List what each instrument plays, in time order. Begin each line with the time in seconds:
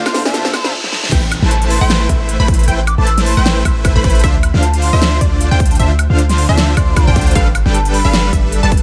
Already playing: supersaw synth D3 D4 F4 C5 F5, grand piano A3 D4 E4 F4 C5, riser
0.06 flute C6, snare, closed hi-hat, high woodblock
0.13 grand piano A3 D4 E4 F4, snare, open hi-hat
0.17 grand piano C5
0.25 supersaw synth D3 D4 F4 C5 E5, flute A5, snare
0.34 snare, closed hi-hat, reverse cymbal
0.45 snare
0.53 flute C6, snare, closed hi-hat, high woodblock
0.64 supersaw synth D3 D4 F4 C5 E5, snare
0.84 snare
0.92 snare
1.03 snare
1.12 808-style bass A1, supersaw synth A3 E4 B4 C5 G5, synth pluck G5, kick, closed hi-hat, crash, downlifter
1.31 closed hi-hat, high woodblock
1.42 808-style bass A1, supersaw synth A3 E4 B4 C5 A5, synth pluck A5, snare
1.51 flute A5, closed hi-hat
1.62 closed hi-hat
1.70 flute C6, open hi-hat
1.81 808-style bass A1, supersaw synth A3 E4 B4 C5 G5, synth pluck G5
1.90 snare, closed hi-hat
2.09 808-style bass A1, supersaw synth A3 E4 B4 C5 E5, synth pluck E5, kick, closed hi-hat
2.29 closed hi-hat
2.40 808-style bass A1, supersaw synth A3 E4 B4 C5 B5, synth pluck B5
2.48 kick, closed hi-hat
2.54 closed hi-hat
2.59 closed hi-hat
2.64 closed hi-hat
2.68 808-style bass A1, supersaw synth A3 E4 B4 C5 G5, synth pluck G5, closed hi-hat
2.87 flute D6, closed hi-hat, high woodblock
2.98 808-style bass A1, supersaw synth A3 E4 B4 C5 A5, synth pluck A5, flute D6
3.07 flute E6, closed hi-hat
3.18 snare, closed hi-hat
3.26 flute C6, open hi-hat
3.37 808-style bass A1, supersaw synth A3 E4 B4 C5 G5, synth pluck G5
3.46 snare, closed hi-hat
3.65 808-style bass A1, supersaw synth A3 E4 B4 C5 E5, synth pluck E5, kick, closed hi-hat, high woodblock
3.85 kick, closed hi-hat, high woodblock
3.96 808-style bass A1, supersaw synth A3 E4 B4 C5 B5, synth pluck B5
4.04 kick, closed hi-hat
4.10 closed hi-hat
4.15 closed hi-hat
4.19 closed hi-hat
4.24 808-style bass D2, supersaw synth D3 D4 F4 C5 E5, synth pluck E5, kick, closed hi-hat
4.43 closed hi-hat, high woodblock
4.54 808-style bass D2, supersaw synth D3 D4 F4 C5 F5, synth pluck F5, snare
4.63 flute A5, closed hi-hat
4.74 closed hi-hat
4.82 flute C6, open hi-hat
4.93 808-style bass D2, supersaw synth D3 D4 F4 C5 E5, synth pluck E5
5.02 snare, closed hi-hat
5.21 808-style bass D2, supersaw synth D3 D4 F4 C5 D5, synth pluck D5, kick, closed hi-hat
5.41 closed hi-hat
5.51 808-style bass D2, supersaw synth D3 D4 F4 C5 G5, synth pluck G5
5.60 kick, closed hi-hat
5.66 closed hi-hat
5.71 flute A5, closed hi-hat
5.75 closed hi-hat
5.79 808-style bass D2, supersaw synth D3 D4 F4 C5 E5, synth pluck E5, flute A5, closed hi-hat
5.99 closed hi-hat, high woodblock
6.10 808-style bass D2, supersaw synth D3 D4 F4 C5 F5, synth pluck F5
6.19 closed hi-hat
6.29 flute C6, snare, closed hi-hat
6.38 open hi-hat
6.49 808-style bass D2, supersaw synth D3 D4 F4 C5 E5, synth pluck E5, flute A5
6.58 snare, closed hi-hat
6.77 808-style bass D2, supersaw synth D3 D4 F4 C5 D5, synth pluck D5, flute C6, kick, closed hi-hat, high woodblock
6.96 kick, closed hi-hat, high woodblock
7.07 808-style bass D2, supersaw synth D3 D4 F4 C5 G5, synth pluck G5
7.16 kick, closed hi-hat
7.21 closed hi-hat
7.27 closed hi-hat
7.31 closed hi-hat
7.35 808-style bass G1, supersaw synth G3 D4 A4 B4 F5, synth pluck F5, kick, closed hi-hat
7.55 closed hi-hat, high woodblock
7.66 808-style bass G1, supersaw synth G3 D4 A4 B4 G5, synth pluck G5, snare
7.74 flute A5, closed hi-hat
7.85 closed hi-hat
7.94 flute B5, open hi-hat
8.05 808-style bass G1, supersaw synth G3 D4 A4 B4 F5, synth pluck F5
8.13 snare, closed hi-hat
8.33 808-style bass G1, supersaw synth G3 D4 A4 B4 E5, synth pluck E5, kick, closed hi-hat
8.52 closed hi-hat
8.63 808-style bass G1, supersaw synth G3 D4 A4 B4 A5, synth pluck A5
8.72 kick, closed hi-hat
8.77 closed hi-hat